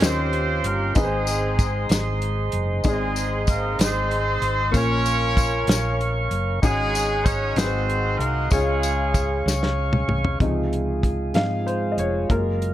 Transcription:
Already playing: C#4
0.00 D#2 D#3 C#4 D#4 F4 G4 C5 F5 C6, snare, closed hi-hat, tambourine
0.05 C4 F4 G4 C5
0.33 closed hi-hat
0.64 G1 A#3 A#4, closed hi-hat
0.95 G#1 G#2 G#3 C4 D#4 G#4 B4 C5 D#5, kick, closed hi-hat, tambourine
1.05 C5
1.27 closed hi-hat, tambourine
1.59 kick, closed hi-hat, tambourine
1.89 G#1, snare, closed hi-hat, tambourine
2.22 closed hi-hat
2.52 F#1, closed hi-hat
2.84 G#1 G#2 G#3 C4 D#4 G#4 D5, kick, closed hi-hat, tambourine
2.88 C4 D#4
2.93 D#5
3.16 closed hi-hat, tambourine
3.47 A#3 A#4, kick, closed hi-hat, tambourine
3.79 G#1 C4 D#4 G#4 C5, snare, closed hi-hat, tambourine
4.11 closed hi-hat
4.42 G#1, closed hi-hat
4.71 A#1 A#2 A#3 C#4 F4 A#4 C#5 F5 C#6, kick, closed hi-hat, tambourine
4.76 C#4 F4 A#4 C#5
5.06 closed hi-hat, tambourine
5.37 kick, closed hi-hat, tambourine
5.67 A#1, snare, closed hi-hat
5.71 tambourine
6.01 closed hi-hat
6.31 F#1, closed hi-hat
6.62 G#1 G#2 G#3 C#4 D#4 F#4 G#4 C#5 D#5 F#5, kick, closed hi-hat, tambourine
6.95 closed hi-hat, tambourine
7.26 C#4 C#5, kick, closed hi-hat, tambourine
7.56 G#1 G#2 C4 D#4 F#4 G#4 B4 C5 F#5 C6, snare, closed hi-hat, tambourine
7.65 C5
7.89 closed hi-hat
8.18 C2 A#3 A#4, closed hi-hat
8.51 C#2 C#3 G#3 C#4 F4 G#4 C#5 F5 C#6, kick, closed hi-hat, tambourine
8.83 closed hi-hat, tambourine
9.14 kick, closed hi-hat, tambourine
9.46 C#2, snare, tambourine
9.63 snare
9.93 mid tom
10.08 C2, mid tom
10.25 floor tom
10.40 C#2 C3 F3 G#3 D#4 F4 G#4, kick, closed hi-hat
10.73 closed hi-hat
11.03 kick, closed hi-hat
11.34 G#2 F3 C4 D#4 F5, snare, closed hi-hat
11.67 C5, closed hi-hat
11.92 D#5
11.97 F1 C#5, closed hi-hat
12.29 F#1 F#3 G#3 A#3 F4 A#4, kick, closed hi-hat
12.62 closed hi-hat

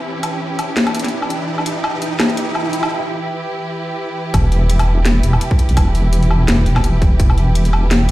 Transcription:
Already playing: E3 E4 G4 B4, riser
0.23 closed hi-hat, low woodblock
0.59 closed hi-hat, low woodblock
0.77 snare
0.87 closed hi-hat, low woodblock
0.95 closed hi-hat
0.99 closed hi-hat
1.04 snare, closed hi-hat
1.08 closed hi-hat
1.22 low woodblock
1.30 closed hi-hat
1.58 low woodblock
1.66 closed hi-hat
1.84 low woodblock
2.02 closed hi-hat
2.20 snare, low woodblock
2.30 closed hi-hat
2.37 closed hi-hat
2.55 low woodblock
2.73 closed hi-hat
2.83 low woodblock
4.34 E1, kick, closed hi-hat, low woodblock
4.52 open hi-hat
4.70 closed hi-hat
4.79 open hi-hat, low woodblock
5.05 snare, closed hi-hat
5.23 E1, closed hi-hat
5.33 low woodblock
5.41 closed hi-hat
5.51 kick
5.59 closed hi-hat
5.69 B1, open hi-hat
5.77 E1, kick, closed hi-hat, low woodblock
5.95 open hi-hat
6.13 closed hi-hat
6.23 open hi-hat
6.31 low woodblock
6.48 E1, snare, closed hi-hat
6.66 E1, open hi-hat
6.76 kick, snare, low woodblock
6.84 closed hi-hat
7.02 kick, open hi-hat
7.20 E1, kick, closed hi-hat
7.30 low woodblock
7.38 open hi-hat
7.55 closed hi-hat
7.65 open hi-hat
7.73 low woodblock
7.91 snare, closed hi-hat

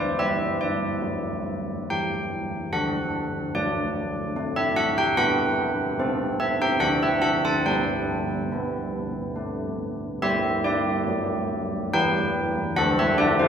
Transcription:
Already playing: A4 D5
0.19 G3 B4 E5
0.61 D5
1.02 F#3
1.90 E3 G5
2.72 D3 A4 F#5
3.55 F#3 D5
4.36 A3
4.56 E5
4.76 F#5
4.98 G5
5.17 B3 G4 F#5
5.99 C4 A4
6.40 E5
6.62 G5
6.80 D3 A4 F#5
7.03 E5
7.22 F#5
7.45 A5
7.66 G3 B4 G5
8.52 B3
9.36 A3
10.22 G3 G4 E5
10.64 G4 D5
11.07 F#3
11.94 E3 B4 G5
12.76 D3 A4 F#5
12.99 G4 E5
13.18 F#4 D5
13.39 E4 C5

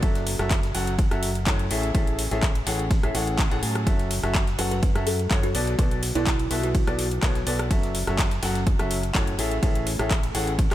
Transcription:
0.03 F#3 C#4 F#4 A4 E5, kick, closed hi-hat, ride
0.15 snare, closed hi-hat
0.27 snare, open hi-hat, ride
0.39 F#1 F#3 C#4 F#4 A4 E5, cross-stick, snare, closed hi-hat
0.51 kick, snare, clap, closed hi-hat, ride
0.63 snare, closed hi-hat
0.75 F#1 F#3 C#4 F#4 A4 F#5, open hi-hat, ride
0.87 closed hi-hat
0.99 kick, closed hi-hat, ride
1.11 F#1 F#3 C#4 F#4 A4 E5, cross-stick, closed hi-hat
1.23 open hi-hat, ride
1.35 closed hi-hat
1.47 F#2 A2 C#4 F#4 A4 C#5, kick, snare, clap, closed hi-hat, ride
1.59 closed hi-hat
1.71 A1 A2 C#4 G#4 A4 E5, open hi-hat, ride
1.83 closed hi-hat
1.95 A1 C#4 G#4 A4 E5, kick, closed hi-hat, ride
2.07 closed hi-hat
2.19 snare, open hi-hat, ride
2.31 A1 A2 C#4 G#4 A4 E5, snare, closed hi-hat
2.43 kick, snare, clap, closed hi-hat, ride
2.55 closed hi-hat, ride
2.67 A1 A2 C#4 G#4 A4 F#5, snare, open hi-hat, ride
2.79 closed hi-hat
2.91 kick, snare, closed hi-hat, ride
3.03 A1 A2 C#4 G#4 A4 E5, cross-stick, closed hi-hat
3.15 A1 A2 C#4 G#4 A4 F#5, open hi-hat, ride
3.27 closed hi-hat
3.39 kick, snare, clap, closed hi-hat, ride
3.51 A1 A2 C#4 G#4 A4 F#5, snare, closed hi-hat
3.63 A2 F#3 C#4 G#4 A4 G#5, open hi-hat
3.75 cross-stick, closed hi-hat
3.87 F#1 F#3 C#4 F#4 A4 E5, kick, closed hi-hat, ride
3.99 snare, closed hi-hat
4.11 snare, open hi-hat, ride
4.23 F#1 F#3 C#4 F#4 A4 E5, cross-stick, snare, closed hi-hat
4.35 kick, snare, clap, closed hi-hat, ride
4.47 snare, closed hi-hat
4.59 F#1 F#3 C#4 F#4 A4 B4 F#5, open hi-hat, ride
4.71 B4, closed hi-hat
4.83 kick, closed hi-hat, ride
4.95 F#2 F#3 C#4 F#4 A4 E5, cross-stick, closed hi-hat
5.07 A4, open hi-hat, ride
5.19 closed hi-hat
5.31 F#2 C#4 F#4 A4 C#5, kick, snare, clap, closed hi-hat, ride
5.43 F#4, closed hi-hat
5.55 B1 B2 B3 F#4 A4 D5, open hi-hat, ride
5.67 closed hi-hat
5.79 B1 B2 B3 F#4 A4 D5, kick, closed hi-hat, ride
5.91 closed hi-hat
6.03 snare, open hi-hat, ride
6.15 B1 B2 B3 E4 F#4 A4 D5, snare, closed hi-hat
6.27 kick, snare, clap, closed hi-hat, ride
6.39 closed hi-hat, ride
6.51 B1 B2 B3 F#4 A4 E5, open hi-hat, ride
6.63 F#4, closed hi-hat
6.75 kick, closed hi-hat, ride
6.87 B1 B2 B3 F#4 A4 D5, cross-stick, closed hi-hat
6.99 open hi-hat, ride
7.11 closed hi-hat
7.23 B1 B2 B3 F#4 A4 C#5, kick, snare, clap, closed hi-hat, ride
7.35 snare, closed hi-hat
7.47 B1 B3 F#4 A4 D5, open hi-hat, ride
7.59 cross-stick, closed hi-hat
7.71 F#1 F#3 C#4 F#4 A4 E5, kick, closed hi-hat, ride
7.83 snare, closed hi-hat
7.95 snare, open hi-hat, ride
8.07 F#1 F#3 C#4 F#4 A4 E5, cross-stick, snare, closed hi-hat
8.19 kick, snare, clap, closed hi-hat, ride
8.31 snare, closed hi-hat
8.43 F#1 F#3 C#4 F#4 A4 F#5, snare, open hi-hat, ride
8.55 snare, closed hi-hat
8.67 kick, closed hi-hat, ride
8.79 F#1 F#3 C#4 F#4 A4 E5, cross-stick, closed hi-hat
8.91 open hi-hat, ride
9.03 closed hi-hat
9.15 A2 C#4 F#4 A4 C#5, kick, snare, clap, closed hi-hat, ride
9.27 closed hi-hat
9.39 A1 A2 C#4 G#4 A4 E5, open hi-hat, ride
9.51 closed hi-hat
9.63 A1 A2 C#4 G#4 A4 E5, kick, closed hi-hat, ride
9.75 closed hi-hat
9.87 snare, open hi-hat, ride
9.99 A1 A2 C#4 G#4 A4 E5, cross-stick, snare, closed hi-hat
10.11 kick, snare, clap, closed hi-hat, ride
10.23 closed hi-hat, ride
10.35 A1 A2 C#4 G#4 A4 F#5, open hi-hat, ride
10.47 closed hi-hat
10.59 kick, closed hi-hat, ride
10.71 A1 A2 C#4 G#4 A4 E5, cross-stick, clap, closed hi-hat

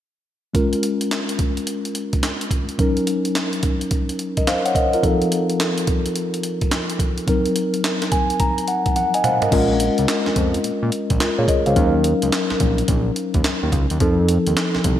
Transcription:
0.54 G#3 C#4 F4 A#4, kick, closed hi-hat
0.73 closed hi-hat
0.83 closed hi-hat
1.01 closed hi-hat
1.11 snare, clap, closed hi-hat
1.29 closed hi-hat
1.39 kick, closed hi-hat
1.57 closed hi-hat
1.67 closed hi-hat
1.85 closed hi-hat
1.95 closed hi-hat
2.13 kick, closed hi-hat
2.23 snare, clap, closed hi-hat
2.41 closed hi-hat
2.51 kick, closed hi-hat
2.69 closed hi-hat
2.78 F#3 C#4 D#4 A#4, kick, closed hi-hat
2.97 closed hi-hat
3.07 closed hi-hat
3.25 closed hi-hat
3.35 snare, clap, closed hi-hat
3.53 closed hi-hat
3.63 kick, closed hi-hat
3.81 closed hi-hat
3.91 kick, closed hi-hat
4.09 closed hi-hat
4.19 closed hi-hat
4.37 A#4 D#5, kick, closed hi-hat
4.47 C5 F5, snare, clap, closed hi-hat
4.66 C#5 F#5, closed hi-hat
4.75 A#4 D#5, kick, closed hi-hat
4.93 F4 A#4, closed hi-hat
5.03 F3 C4 D#4 A4, kick, closed hi-hat
5.22 closed hi-hat
5.32 closed hi-hat
5.50 closed hi-hat
5.60 snare, clap, closed hi-hat
5.78 closed hi-hat
5.87 kick, closed hi-hat
6.06 closed hi-hat
6.16 closed hi-hat
6.34 closed hi-hat
6.43 closed hi-hat
6.61 kick, closed hi-hat
6.71 snare, clap, closed hi-hat
6.90 closed hi-hat
6.99 kick, closed hi-hat
7.18 closed hi-hat
7.27 F#3 C4 D#4 A#4, kick, closed hi-hat
7.46 closed hi-hat
7.56 closed hi-hat
7.74 closed hi-hat
7.84 snare, clap, closed hi-hat
8.02 snare, closed hi-hat
8.12 G#5, kick, closed hi-hat
8.30 closed hi-hat
8.40 A#5, kick, closed hi-hat
8.58 closed hi-hat
8.68 F#5, closed hi-hat
8.86 kick, closed hi-hat
8.96 F#5, closed hi-hat, high tom
9.14 D#5 G#5, closed hi-hat
9.24 C5 F5 F#5, closed hi-hat, mid tom
9.42 A#4 D#5, closed hi-hat, floor tom
9.51 A#1 G#3 C#4 F4 A#4, kick, closed hi-hat, crash
9.80 closed hi-hat
9.98 C#2, closed hi-hat
10.08 snare, clap, closed hi-hat
10.26 F2, snare
10.36 F2, kick, closed hi-hat
10.54 closed hi-hat
10.64 A#2, closed hi-hat
10.83 A#2
10.92 closed hi-hat
11.10 A#1, kick, closed hi-hat
11.20 F4 A#4, snare, clap, closed hi-hat
11.38 A#2 G#4 C#5
11.48 A#4 D#5, kick, closed hi-hat
11.66 C#2 C5 F5, closed hi-hat
11.75 D#2 F#3 C#4 D#4 A#4, kick, closed hi-hat
12.04 closed hi-hat
12.22 C#2, closed hi-hat
12.32 snare, clap, closed hi-hat
12.50 A#1, snare
12.60 A#1, kick, closed hi-hat
12.78 closed hi-hat
12.88 A#1, kick, closed hi-hat
13.16 closed hi-hat
13.34 D#2, kick, closed hi-hat
13.44 snare, clap, closed hi-hat
13.63 D#2
13.72 C#2, kick, closed hi-hat
13.90 D#2, closed hi-hat
14.00 F2 F3 C4 D#4 A4, kick, closed hi-hat
14.29 closed hi-hat
14.47 D#2, closed hi-hat
14.57 snare, clap, closed hi-hat
14.75 C2, snare
14.84 C2, kick, closed hi-hat

